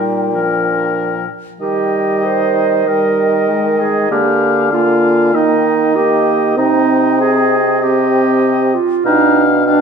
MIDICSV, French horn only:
0, 0, Header, 1, 2, 480
1, 0, Start_track
1, 0, Key_signature, -3, "major"
1, 0, Tempo, 638978
1, 1211, Time_signature, 4, 2, 24, 8
1, 1694, Tempo, 617920
1, 7563, End_track
2, 0, Start_track
2, 0, Title_t, "French horn"
2, 0, Program_c, 0, 60
2, 0, Note_on_c, 0, 55, 25
2, 233, Note_off_c, 0, 55, 0
2, 252, Note_on_c, 0, 53, 30
2, 955, Note_off_c, 0, 53, 0
2, 1206, Note_on_c, 0, 55, 33
2, 2142, Note_off_c, 0, 55, 0
2, 2170, Note_on_c, 0, 55, 34
2, 2654, Note_on_c, 0, 56, 31
2, 2666, Note_off_c, 0, 55, 0
2, 3127, Note_off_c, 0, 56, 0
2, 3132, Note_on_c, 0, 58, 35
2, 3602, Note_off_c, 0, 58, 0
2, 3609, Note_on_c, 0, 58, 39
2, 4081, Note_off_c, 0, 58, 0
2, 4093, Note_on_c, 0, 58, 37
2, 4562, Note_off_c, 0, 58, 0
2, 4570, Note_on_c, 0, 58, 42
2, 5044, Note_on_c, 0, 60, 40
2, 5055, Note_off_c, 0, 58, 0
2, 5889, Note_off_c, 0, 60, 0
2, 6021, Note_on_c, 0, 60, 48
2, 6744, Note_off_c, 0, 60, 0
2, 6976, Note_on_c, 0, 62, 44
2, 7424, Note_off_c, 0, 62, 0
2, 7454, Note_on_c, 0, 62, 50
2, 7563, Note_off_c, 0, 62, 0
2, 7563, End_track
0, 0, End_of_file